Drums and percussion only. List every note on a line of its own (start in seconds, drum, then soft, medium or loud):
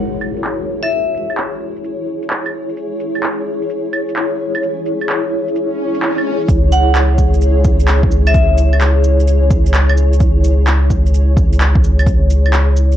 0.21 claves medium
0.36 shaker soft
0.44 clap medium
0.44 shaker medium
0.83 claves medium
0.83 shaker soft
0.91 shaker soft
1.14 shaker medium
1.30 claves soft
1.37 clap loud
1.37 shaker medium
1.76 shaker soft
1.84 shaker medium
2.22 shaker soft
2.30 clap loud
2.30 shaker medium
2.46 claves soft
2.69 shaker soft
2.77 shaker soft
3.00 shaker medium
3.15 claves soft
3.23 clap medium
3.23 shaker medium
3.62 shaker soft
3.69 shaker soft
3.93 claves medium
4.09 shaker soft
4.16 clap loud
4.16 shaker soft
4.55 claves soft
4.55 shaker soft
4.63 shaker soft
4.86 shaker soft
5.01 claves soft
5.09 clap loud
5.09 shaker soft
5.48 shaker soft
5.56 shaker soft
5.94 shaker soft
6.02 clap loud
6.02 shaker soft
6.18 claves soft
6.41 shaker soft
6.49 kick loud
6.49 shaker medium
6.72 cabasa medium
6.72 shaker medium
6.95 clap loud
6.95 shaker medium
7.18 kick medium
7.18 cabasa medium
7.34 shaker soft
7.42 shaker medium
7.64 kick loud
7.64 cabasa medium
7.80 shaker medium
7.88 clap loud
7.88 shaker medium
8.03 kick loud
8.11 cabasa medium
8.27 claves medium
8.27 shaker soft
8.34 kick loud
8.34 shaker medium
8.58 cabasa medium
8.58 shaker medium
8.73 claves soft
8.81 clap loud
8.81 shaker medium
9.04 cabasa medium
9.20 shaker soft
9.28 shaker medium
9.50 kick loud
9.50 cabasa medium
9.66 shaker medium
9.74 clap loud
9.74 cabasa soft
9.74 shaker medium
9.89 claves medium
9.97 cabasa medium
10.13 shaker soft
10.20 kick loud
10.20 shaker medium
10.44 cabasa medium
10.44 shaker medium
10.67 clap loud
10.67 shaker medium
10.90 kick medium
10.90 cabasa medium
11.06 shaker soft
11.14 shaker medium
11.37 kick loud
11.37 cabasa medium
11.53 shaker medium
11.61 clap loud
11.61 shaker medium
11.75 kick loud
11.84 cabasa medium
11.99 claves medium
11.99 shaker soft
12.06 kick loud
12.06 shaker medium
12.30 cabasa medium
12.30 shaker medium
12.46 claves soft
12.53 clap loud
12.53 shaker medium
12.77 cabasa medium
12.92 shaker soft